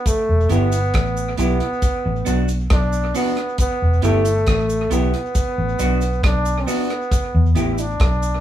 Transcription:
0.06 trombone A3, kick, closed hi-hat, cabasa
0.29 fingered electric bass E1
0.49 fingered electric bass G1, clean electric guitar B3 E4 G4, trombone B3, closed hi-hat, cabasa
0.72 closed hi-hat, cabasa
0.94 fingered electric bass A1, kick, cross-stick, closed hi-hat
1.17 cabasa
1.37 fingered electric bass B1, clean electric guitar B3 E4 G4, trombone B3, closed hi-hat, cabasa
1.60 closed hi-hat
1.82 kick, closed hi-hat, cabasa
2.05 fingered electric bass A1, muted clean electric guitar stroke
2.25 fingered electric bass B1, clean electric guitar B3 D4 F#4, closed hi-hat, cabasa
2.48 closed hi-hat, cabasa
2.70 fingered electric bass B1, trombone D4, kick, cross-stick, closed hi-hat
2.93 cabasa
3.14 clean electric guitar B3 D4 F#4, trombone B3, open hi-hat, cabasa
3.37 cross-stick, closed hi-hat
3.58 trombone B3, kick, closed hi-hat, cabasa
3.82 fingered electric bass E1
4.02 fingered electric bass G1, trombone A3, clean electric guitar B3 E4 G4, closed hi-hat, cabasa
4.25 closed hi-hat, cabasa
4.47 fingered electric bass A1, kick, cross-stick, closed hi-hat
4.70 cabasa
4.90 fingered electric bass B1, clean electric guitar B3 E4 G4, trombone B3, closed hi-hat, cabasa
5.14 closed hi-hat
5.35 kick, closed hi-hat, cabasa
5.58 fingered electric bass A1
5.79 fingered electric bass B1, clean electric guitar B3 D4 F#4, closed hi-hat, cabasa
6.01 muted clean electric guitar stroke, closed hi-hat, cabasa
6.23 fingered electric bass B1, trombone D4, kick, cross-stick, closed hi-hat
6.46 cabasa
6.61 trombone C4
6.67 clean electric guitar B3 D4 F#4, trombone B3, open hi-hat, cabasa
6.90 cross-stick, closed hi-hat
7.11 kick, closed hi-hat, cabasa
7.35 fingered electric bass E2
7.55 fingered electric bass A1, clean electric guitar B3 E4 G4, closed hi-hat, cabasa
7.72 trombone E4
7.78 trombone D4, closed hi-hat, cabasa
8.00 fingered electric bass B1, kick, cross-stick, closed hi-hat
8.23 cabasa

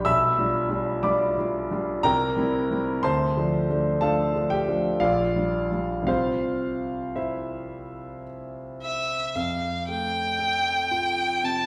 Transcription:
0.05 grand piano B1 E5 B5 E6
0.38 grand piano G3 D4 F4
0.69 grand piano G3 D4 F4
1.03 grand piano G3 D4 F4 D5 B5 D6
1.38 grand piano G3 D4 F4
1.71 grand piano G3 D4 F4
2.03 grand piano C2 A#4 G5 A#5
2.37 grand piano G3 C4 E4
2.71 grand piano G3 C4 E4
3.03 grand piano D2 C5 A5 C6
3.37 grand piano F3 A3 D4
3.70 grand piano F3 A3 D4
4.01 grand piano F3 A3 D4 A4 F5 A5
4.35 grand piano F3 A3 D4
4.50 grand piano G4 G5
4.68 grand piano F3 A3 D4
5.00 grand piano A#1 F4 D5 F5
5.36 grand piano G3 D4
5.72 grand piano G3 D4
6.03 grand piano C2 G3 C4 F5
6.08 grand piano F4 C5
7.16 grand piano E4 C5 E5
8.82 violin E5
9.35 grand piano F2, violin F5
9.88 grand piano A3, violin G5
10.39 grand piano A4
10.91 grand piano F4
11.43 grand piano C3, violin A5

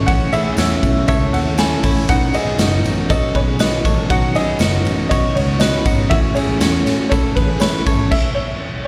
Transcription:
Already playing: string machine A3 C#4 E4, reed electric piano C#4 E4 A4 C#5
0.06 picked electric bass A1, steel-string acoustic guitar A2 E3 A3 C#4 E4, reed electric piano C#4 E4 A4 C#5, clean electric guitar C#4 F#4, upright piano F#5, kick, ride
0.32 steel-string acoustic guitar A3 C#4, reed electric piano C#4 E4 A4 C#5, clean electric guitar E4 G#4, upright piano E5, ride, tambourine
0.57 picked electric bass E2, steel-string acoustic guitar E3 A3 C#4 E4, reed electric piano C#4 E4 A4 C#5, clean electric guitar C#4 F#4, snare, ride, tambourine
0.82 picked electric bass B1, steel-string acoustic guitar A3 C#4 E4, reed electric piano C#4 E4 A4 C#5, kick, ride, tambourine
1.08 picked electric bass C#2, reed electric piano C#4 E4 A4 C#5, clean electric guitar A4 C#5, upright piano E5, kick, ride, tambourine
1.33 picked electric bass D#2, reed electric piano C#4 E4 A4 C#5, upright piano F#5, ride
1.57 steel-string acoustic guitar E3 A3 C#4 E4, reed electric piano C#4 E4 A4 C#5, clean electric guitar E4 A4, upright piano G#5, snare, ride, tambourine
1.83 picked electric bass A1, steel-string acoustic guitar A3 C#4 E4, reed electric piano C#4 E4 A4 C#5, clean electric guitar C#4 E4, kick, open hi-hat, ride, tambourine
2.08 picked electric bass B1, steel-string acoustic guitar B2 D#3 F#3 C#4 D#4, string machine D#3 B3, reed electric piano D#4 F#4 B4 C#5, clean electric guitar D#4 F#4, upright piano F#5, kick, hi-hat pedal, ride, tambourine
2.33 steel-string acoustic guitar F#3 C#4 D#4, reed electric piano D#4 F#4 B4 C#5, clean electric guitar E4 G#4, upright piano D#5, ride, tambourine
2.46 picked electric bass B1
2.58 picked electric bass F#1, steel-string acoustic guitar D#3 F#3 C#4 D#4, reed electric piano D#4 F#4 B4 C#5, clean electric guitar D#4 F#4, snare, ride, tambourine
2.84 picked electric bass A1, steel-string acoustic guitar F#3 C#4 D#4, reed electric piano D#4 F#4 B4 C#5, ride, tambourine
3.09 reed electric piano D#4 F#4 B4 C#5, clean electric guitar F#4 A4, upright piano D#5, kick, ride, tambourine
3.34 picked electric bass B1, reed electric piano D#4 F#4 B4, clean electric guitar G#4 B4, upright piano C#5, kick, ride
3.59 steel-string acoustic guitar D#3 F#3 C#4 D#4, reed electric piano D#4 F#4 B4 C#5, clean electric guitar F#4 B4, upright piano D#5, snare, ride, tambourine
3.84 picked electric bass A1, steel-string acoustic guitar F#3 C#4 D#4, reed electric piano D#4 F#4 B4 C#5, clean electric guitar A4 C#5, kick, ride, tambourine
4.09 picked electric bass B1, steel-string acoustic guitar B2 D#3 F#3 C#4 D#4, reed electric piano D#4 F#4 B4 C#5, clean electric guitar D#4 F#4, string machine D#4, upright piano F#5, kick, ride, tambourine
4.35 steel-string acoustic guitar F#3 C#4 D#4, reed electric piano D#4 F#4 B4 C#5, clean electric guitar E4 G#4, upright piano D#5, ride, tambourine
4.59 picked electric bass F#1, steel-string acoustic guitar D#3 F#3 C#4, reed electric piano D#4 F#4 B4 C#5, clean electric guitar D#4 F#4, snare, ride, tambourine
4.63 steel-string acoustic guitar D#4
4.84 picked electric bass A1, steel-string acoustic guitar F#3 C#4 D#4, reed electric piano D#4 F#4 B4 C#5, ride, tambourine
5.09 picked electric bass B1, reed electric piano D#4 F#4 B4 C#5, clean electric guitar F#4 C#5, upright piano D#5, kick, ride, tambourine
5.35 picked electric bass C#2, reed electric piano F#4 B4 C#5, upright piano C#5, ride
5.59 steel-string acoustic guitar D#3 F#3 C#4, reed electric piano D#4 F#4 B4 C#5, clean electric guitar F#4 B4, upright piano D#5, snare, ride, tambourine
5.64 steel-string acoustic guitar D#4
5.85 picked electric bass G#1, steel-string acoustic guitar F#3 C#4 D#4, reed electric piano D#4 F#4 B4 C#5, clean electric guitar D#4 F#4, kick, ride, tambourine
6.10 picked electric bass A1, steel-string acoustic guitar A2 E3 A3 C#4 E4, string machine E3 A3 C#4, reed electric piano C#4 E4 A4 C#5, clean electric guitar C#4 F#4, upright piano E5, kick, ride
6.35 steel-string acoustic guitar A3 C#4 E4, reed electric piano C#4 E4 A4 C#5, clean electric guitar E4 G#4, upright piano C#5, ride, tambourine
6.48 picked electric bass A1
6.59 picked electric bass E2, steel-string acoustic guitar E3 A3 C#4 E4, reed electric piano C#4 E4 A4 C#5, clean electric guitar C#4 F#4, snare, ride, tambourine
6.85 picked electric bass A2, steel-string acoustic guitar A3 C#4 E4, reed electric piano C#4 E4 A4 C#5, snare, ride, tambourine
7.09 reed electric piano C#4 E4 A4 C#5, clean electric guitar E4 A4, upright piano C#5, kick, ride, tambourine
7.35 picked electric bass A1, reed electric piano C#4 E4 A4 C#5, clean electric guitar G#4 B4, upright piano B4, kick, ride, tambourine
7.60 steel-string acoustic guitar E3 A3 C#4 E4, reed electric piano C#4 E4 A4 C#5, clean electric guitar E4 B4, upright piano C#5, snare, ride, tambourine
7.84 picked electric bass G#1, steel-string acoustic guitar A3 C#4 E4, reed electric piano C#4 E4 C#5, clean electric guitar A4 C#5, kick, ride, tambourine
8.11 upright piano E5, kick, crash
8.35 upright piano C#5

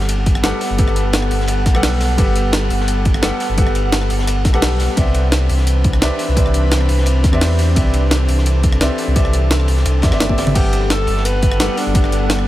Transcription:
Already playing: sub bass G1, felt piano G3 G4 A4 B4 F#5, analog synth pad G3 B3 A4 F#5
0.00 snare
0.09 closed hi-hat, ride
0.26 kick, closed hi-hat, ride
0.35 cross-stick
0.43 sub bass G1, felt piano G3 G4 A4 B4 F#5, snare, closed hi-hat, ride
0.61 snare, open hi-hat, ride
0.70 sub bass G1
0.77 felt piano G3 G4 A4 B4 F#5, kick, closed hi-hat, ride
0.88 cross-stick
0.96 closed hi-hat, ride
1.13 snare, closed hi-hat, ride
1.22 cross-stick
1.31 sub bass G1, open hi-hat, ride
1.40 snare
1.47 cross-stick, closed hi-hat, ride
1.66 sub bass B1, kick, snare, closed hi-hat, ride
1.74 felt piano G3 G4 A4 B4 F#5, cross-stick
1.83 snare, closed hi-hat, open hi-hat
2.00 snare, open hi-hat, ride
2.17 sub bass G1, felt piano G3 G4 A4 B4 F#5, kick, closed hi-hat, ride
2.36 closed hi-hat, ride
2.53 snare, closed hi-hat, ride
2.70 sub bass G1, open hi-hat, ride
2.81 snare
2.88 closed hi-hat, ride
3.05 kick, closed hi-hat, ride
3.14 cross-stick
3.22 sub bass G1, felt piano G3 G4 A4 B4 F#5, snare, closed hi-hat, ride
3.40 snare, open hi-hat, ride
3.49 sub bass G1
3.57 felt piano G3 G4 A4 B4 F#5, kick, closed hi-hat, ride
3.67 cross-stick
3.75 closed hi-hat, ride
3.92 snare, closed hi-hat, ride
4.01 cross-stick
4.10 sub bass G1, open hi-hat, ride
4.19 snare
4.27 cross-stick, closed hi-hat, ride
4.45 sub bass B1, kick, snare, closed hi-hat, ride
4.53 felt piano G3 G4 A4 B4 F#5, cross-stick
4.62 snare, closed hi-hat, open hi-hat
4.80 sub bass B1, snare, open hi-hat, ride
4.96 sub bass C2, analog synth pad E3 C4 D4 B4, felt piano C4 G4 B4 D5 E5, kick, closed hi-hat, ride
5.15 closed hi-hat, ride
5.32 snare, closed hi-hat, ride
5.49 sub bass C2, open hi-hat, ride
5.58 snare
5.67 closed hi-hat, ride
5.84 kick, closed hi-hat, ride
5.93 cross-stick
6.01 sub bass C2, felt piano C4 G4 B4 D5 E5, snare, closed hi-hat, ride
6.19 snare, open hi-hat, ride
6.28 sub bass C2
6.36 felt piano C4 G4 B4 D5 E5, kick, closed hi-hat, ride
6.46 cross-stick
6.54 closed hi-hat, ride
6.72 snare, closed hi-hat, ride
6.81 cross-stick
6.89 sub bass C2, open hi-hat, ride
6.98 snare
7.06 cross-stick, closed hi-hat, ride
7.24 sub bass E2, kick, snare, closed hi-hat, ride
7.32 felt piano C4 G4 B4 D5 E5, cross-stick
7.41 snare, closed hi-hat, open hi-hat
7.59 snare, open hi-hat, ride
7.75 sub bass C2, felt piano C4 G4 B4 D5 E5, analog synth pad A4, kick, closed hi-hat, ride
7.94 closed hi-hat, ride
8.11 snare, closed hi-hat, ride
8.28 sub bass C2, open hi-hat, ride
8.38 snare
8.46 closed hi-hat, ride
8.63 kick, closed hi-hat, ride
8.72 cross-stick
8.81 sub bass C2, felt piano C4 G4 B4 D5 E5, snare, closed hi-hat, ride
8.98 snare, open hi-hat, ride
9.07 sub bass C2
9.15 felt piano C4 G4 B4 D5 E5, kick, closed hi-hat, ride
9.25 cross-stick
9.33 closed hi-hat, ride
9.50 snare, closed hi-hat, ride
9.60 cross-stick
9.68 sub bass C2, open hi-hat, ride
9.77 snare
9.86 sub bass C2, cross-stick, closed hi-hat, ride
10.02 sub bass E2, felt piano C4 G4 B4 D5 E5, kick, snare, closed hi-hat, ride
10.11 sub bass G1, felt piano C4 G4 B4 D5 E5, cross-stick, snare, ride
10.20 sub bass G1, snare, closed hi-hat, high tom, ride
10.29 felt piano C4 G4 B4 D5 E5, kick, high tom
10.38 snare, open hi-hat, ride
10.47 mid tom
10.54 sub bass G1, felt piano G3 G4 A4 B4 F#5, analog synth pad G3 B3 F#5, alto saxophone G4, kick, closed hi-hat, crash, ride
10.73 closed hi-hat, ride
10.90 alto saxophone A4, snare, closed hi-hat, ride
11.07 sub bass G1, open hi-hat, ride
11.17 snare
11.25 alto saxophone B4, closed hi-hat, ride
11.43 kick, closed hi-hat, ride
11.52 cross-stick
11.59 sub bass G1, felt piano G3 G4 A4 B4 F#5, snare, closed hi-hat, ride
11.77 alto saxophone D4, snare, open hi-hat, ride
11.86 sub bass G1
11.94 felt piano G3 G4 A4 B4 F#5, kick, closed hi-hat, ride
12.04 cross-stick
12.12 closed hi-hat, ride
12.30 snare, closed hi-hat, ride
12.39 cross-stick

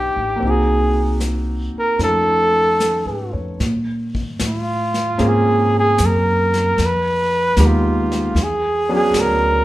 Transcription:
Already playing: upright bass B1, grand piano B3 D4 D#4 F4, flugelhorn G4
0.16 upright bass A1
0.36 grand piano A#3 C4
0.42 upright bass C2, grand piano D#4, brush sweep
0.46 grand piano F#4, flugelhorn G#4
1.20 snare, hi-hat pedal
1.74 muted upright bass stroke
1.79 flugelhorn A#4
1.99 upright bass F2, grand piano A3 C#4 D#4 F4, brush sweep, snare
2.04 flugelhorn A4
2.80 grand piano A4, snare, hi-hat pedal
3.06 upright bass G#2, grand piano B4
3.33 upright bass F2, grand piano C#5
3.60 upright bass A#2, brush sweep, snare
4.15 kick
4.39 upright bass A2, snare, hi-hat pedal
4.47 flugelhorn F4
4.94 snare
5.18 upright bass G#2, grand piano A#3 C4 C#4 F4 G#4, brush sweep, snare
5.28 flugelhorn G#4
5.80 flugelhorn G#4
5.98 upright bass F#2, snare, hi-hat pedal
6.06 flugelhorn A#4
6.54 snare
6.78 upright bass F2, brush sweep, snare
6.86 flugelhorn B4
7.57 upright bass D#2, grand piano G#3 B3 D#4 F4 G4, snare, hi-hat pedal
7.66 flugelhorn F4
8.12 snare
8.35 upright bass E2, brush sweep, snare
8.43 flugelhorn G#4
8.89 grand piano F#3 B3 C#4 D4 G#4
8.95 flugelhorn G#4
9.14 upright bass D2, snare, hi-hat pedal
9.20 flugelhorn A#4

